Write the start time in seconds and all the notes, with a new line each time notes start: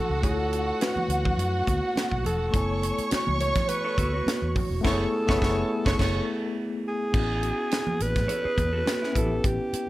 Already playing: A3 D4 E4 F#4 A4 F#5
0.09 C#2
0.21 D2 A3 E4 A4 C#5, kick, closed hi-hat, muted conga
0.26 F4
0.33 F#4
0.53 closed hi-hat
0.81 F#4 B4, snare, closed hi-hat, muted conga
0.96 muted fingered electric bass stroke, high conga, low conga
1.08 D2, closed hi-hat
1.25 kick, low conga
1.37 F#2, closed hi-hat
1.67 D2, kick, closed hi-hat, muted conga, high conga
1.96 snare, closed hi-hat, high conga
2.11 B1, kick
2.25 E1 A4, closed hi-hat, muted conga, low conga
2.50 F#1 A3 B3 E4 C#5 C#6, kick, closed hi-hat, muted conga
2.56 G#5
2.82 closed hi-hat, muted conga
2.98 muted fingered electric bass stroke, closed hi-hat
3.11 F#4, muted fingered electric bass stroke, snare, closed hi-hat
3.27 C#2, high conga, low conga
3.40 C#5, closed hi-hat, muted conga
3.55 kick, snare, closed hi-hat, low conga
3.68 B4, closed hi-hat, muted conga
3.84 A4 C#5
3.98 D2 F#4 A4, kick, closed hi-hat, high conga
4.13 F#4
4.26 muted fingered electric bass stroke, snare, closed hi-hat, muted conga, high conga
4.42 E2
4.55 kick, open hi-hat, muted conga, low conga
4.70 E1
4.81 F#1 A3 B3 E4 A4 C#5 C#6, kick, crash
4.86 snare
4.93 G#4
5.27 F#1 A3 B3 E4 C#5 C#6, kick, snare
5.38 F#1 G#4 C#5 C#6, kick
5.43 snare
5.85 F#1 C#5 C#6, kick, snare
5.98 F#1 C#5 C#6, kick, snare, crash
6.88 G#4
7.12 A1 B3 C#4 E4, kick, crash, muted conga
7.18 F#4
7.24 G#4
7.43 F#4, closed hi-hat
7.71 snare, closed hi-hat
7.87 high conga, low conga
8.00 A1 B4, closed hi-hat
8.16 A2, kick, snare, closed hi-hat, low conga
8.28 A4 C#5, closed hi-hat
8.44 G#4 B4, muted fingered electric bass stroke
8.57 E2, kick, closed hi-hat, muted conga, high conga
8.73 F#4 A4
8.85 F#4, snare, closed hi-hat, muted conga, high conga
9.02 C#4 E4, snare
9.12 A1 B3 C#4 E4 B4, kick, closed hi-hat, muted conga, low conga
9.17 F#4 A4
9.24 G4
9.44 A1 G4, kick, closed hi-hat, muted conga
9.73 muted fingered electric bass stroke, closed hi-hat, muted conga